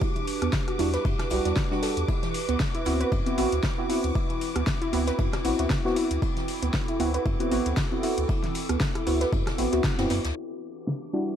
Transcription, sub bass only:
0.42 E2
0.79 E2
1.05 G2
1.31 B1
1.45 E2
1.97 E2
2.49 D2
2.86 D2
3.12 F#2
3.38 A1
3.52 D2
4.04 D2
4.56 D2
4.93 D2
5.19 F#2
5.45 A1
5.59 D2
6.11 D2
6.62 D2
7.00 D2
7.26 F#2
7.51 A1
7.66 D2
8.18 D2
8.70 D2
9.07 D2
9.33 F#2
9.58 A1
9.73 D2
9.99 F#2
10.10 F#2
10.25 D2

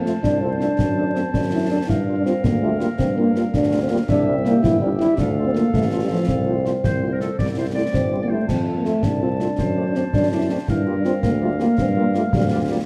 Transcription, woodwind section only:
Already playing: C5 A5
1.88 A#4 F5
4.09 G4 E5
5.18 A4 F5
6.84 C5
7.12 A#4
7.21 A4
7.38 D5
7.57 C5
7.75 D5
8.22 D5
8.29 C5
8.47 A5
9.58 C5
10.69 A#4 F5

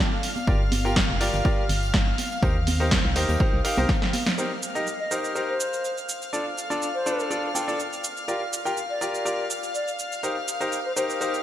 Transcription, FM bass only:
0.47 G1
1.09 F1
1.21 G1
1.34 G1
1.69 G1
2.43 D#2
3.05 C2
3.16 D#2
3.29 D#2
3.53 C2
3.78 C2

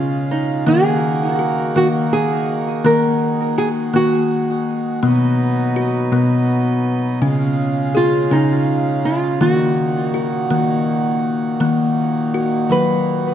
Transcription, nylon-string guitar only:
Already playing: F4
0.31 D#4
0.68 G#4
1.77 F#4
2.13 G#4
2.86 A#4
3.58 G#4
3.96 F#4
7.97 F4
8.32 D#4
9.05 F4
9.42 F#4
11.66 F4
12.72 B4

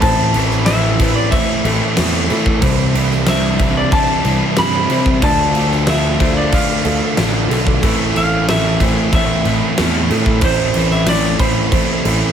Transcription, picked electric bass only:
0.02 A1
1.64 A1
1.98 E2
2.31 A2
2.62 C2
4.25 C2
4.58 G2
4.90 C3
5.23 D2
6.85 D2
7.18 A1
7.49 B1
7.83 A1
9.45 A1
9.79 E2
10.11 A2
10.42 A1
12.05 A1

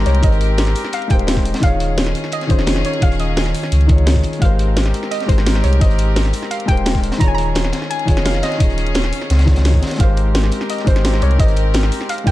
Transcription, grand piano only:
Already playing: G#3 D#4 G4 A#4 C5
0.20 G#3 D#4 G4
0.25 A#4 C5
1.08 G#3 D#4 G4
1.12 A#4 C5
1.60 D#3 D#4 F4
1.64 G#4 C#5
2.47 D#3 D#4 F4
2.51 C#4 G#4
2.99 D#3 D#4 F4
3.04 G#4 C#5
3.86 D#3 D#4 F4
3.91 G#4 C#5
4.39 G#3 D#4 G4
4.43 A#4 C5
5.26 G#3 D#4 G4
5.30 A#4 C5
5.79 G#3 D#4 G4
5.83 A#4 C5
6.66 G#3 D#4 G4
6.70 A#4 C5
7.18 D#3 D#4 F4
7.22 G#4 C#5
8.05 D#3 D#4 F4
8.10 G#4 C#5
8.58 D#3 D#4 F4
8.62 G#4 C#5
9.45 D#3 D#4 F4
9.49 G#4 C#5
9.97 G#3 D#4 G4
10.02 A#4 C5
10.84 G#3 D#4 G4
10.89 A#4 C5
11.37 G#3 D#4 G4
11.41 A#4 C5
12.24 G#3 D#4 G4
12.28 A#4

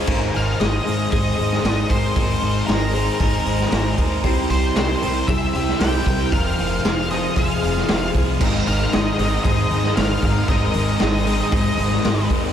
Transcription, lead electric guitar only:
0.36 F5
0.60 D#5
1.11 D#5
1.64 D#5
1.89 C5
2.67 A#4
4.50 C5
4.76 C5
5.27 E5
5.79 G5
6.32 F5
7.11 D#5
7.37 F5
8.68 F5
8.94 D#5
9.44 D#5
9.96 F5
10.49 D#5
11.02 D#5

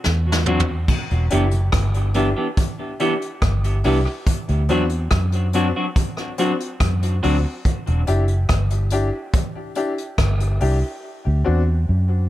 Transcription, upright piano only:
0.46 C4 D4 F#4
1.30 D4 E4 G4
2.15 D4 E4 G4
3.00 D4 E4 G4
3.84 D4 E4 G4
4.69 C4 D4 F#4
5.54 C4 D4 F#4
6.38 C4 D4 F#4
7.23 C4 D4 F#4
8.07 D4 E4 G4
8.92 D4 E4 G4
9.76 D4 E4 G4
10.61 D4 E4 G4
11.44 C4 D4 F#4

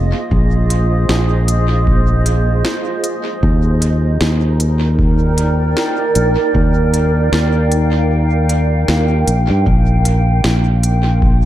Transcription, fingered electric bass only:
Already playing: F1
0.31 A#1
1.09 A#1
3.43 D#2
4.21 D#2
6.16 A#1
6.55 D#2
7.32 D#2
8.88 D#2
9.27 A#1
9.50 G2
9.67 A#1
10.44 A#1

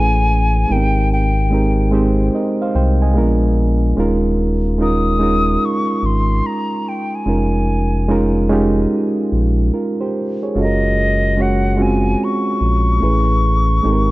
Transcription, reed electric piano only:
Already playing: A3 C#4 E4 G#4 B4
0.68 G#3 B3 D#4 G4 A#4
0.76 C4
1.50 G#3 C4 D#4 G4 A#4
1.91 G#3 C4 D#4 G4 C5
2.35 A#4 D#5
2.62 C5 F5
2.76 C5 G5
3.02 D#5 G#5
3.14 G#3 B3 D4 F4 A#4
3.97 G#3 C#4 D#4 F4 A#4
4.78 G#3 C#4 D#4 F4 A#4
5.19 G#3 C#4 D#4 F4 A#4
7.25 G#3 C#4 D#4 F4 A#4
8.08 G#3 C#4 D#4 F4 A#4
8.49 G#3 C#4 D#4 F4 G4
9.74 F4 A#4
10.01 G4 C5
10.43 G#4 C#5
10.55 G#3 C#4 F4 F#4 A4
10.65 A#4
11.37 G#3 C#4 F#4 C#5
11.77 G#3 C4 C#4 F4 F#4
13.00 A3 C#4 E4 G#4 B4
13.83 G#3 C4 D#4 G4 A4
13.93 A#4

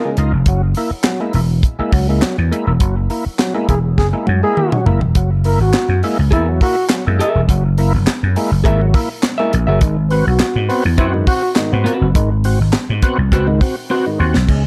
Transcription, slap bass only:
0.17 C#2
0.33 F1
0.46 F#1
0.91 muted slap bass stroke
1.34 E1
1.79 muted slap bass stroke
1.93 C#2
2.23 muted slap bass stroke
2.38 E2
2.67 E1
2.81 F#1
3.26 muted slap bass stroke
3.69 E1
3.98 F#1
4.28 F#2
4.86 F#1
5.02 E1
5.16 F#1
5.60 G#1
5.74 muted slap bass stroke
5.89 F#2
6.19 C#2
6.32 E2
7.07 F#2
7.35 E1
7.49 F#1
7.94 F#1
8.07 muted slap bass stroke
8.23 F#2
8.51 F#1
8.65 G#1
9.54 A#1
9.68 F#1
9.82 G#1
10.27 B1
10.40 muted slap bass stroke
10.56 G#2
10.85 E2
10.98 F#2
11.73 G#2
12.01 F#1
12.15 G#1
12.61 G#1
12.75 muted slap bass stroke
12.90 G#2
13.18 C2
13.32 C#2
14.20 D#2
14.36 B1
14.49 C#2

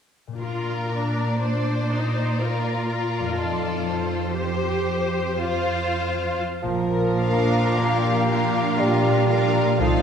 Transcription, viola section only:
0.40 F4
0.92 D4
1.42 D4
1.92 D#4
2.42 F4
4.38 G4
5.46 F4
7.21 D4 F4
8.31 D4 F4
9.30 D4 F4
9.81 D#4 F4

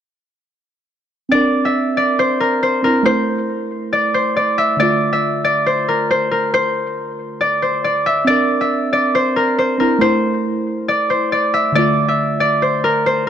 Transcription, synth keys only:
1.29 C4 D4
1.35 A#4
2.83 C4 D4 E4
3.03 A3 E4
3.09 C5
4.77 D3 A3
4.82 F4
8.24 C4 D4
8.30 A#4
9.78 C4 D4 E4
9.98 A3 E4
10.04 C5
11.72 D3 A3
11.78 F4

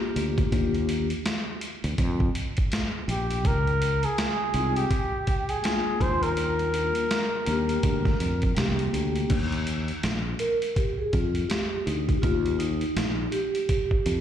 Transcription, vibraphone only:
Already playing: A#3 D4 F4 G4
0.51 A#3 D4 F4 G4
4.52 G#3 C4 D#4 F4
5.62 G#3 A#3 D4 F4
5.98 G3 A#3 D4 F4
6.72 G3 A#3 D4 F4
7.45 G3 A#3 D4 G4
8.55 G3 A#3 D4 G4
10.40 A#4
10.76 G4
10.98 G#4
11.13 F4
11.48 G4
11.86 D#4
12.17 G4
12.22 F4
12.59 D#4
13.32 G4

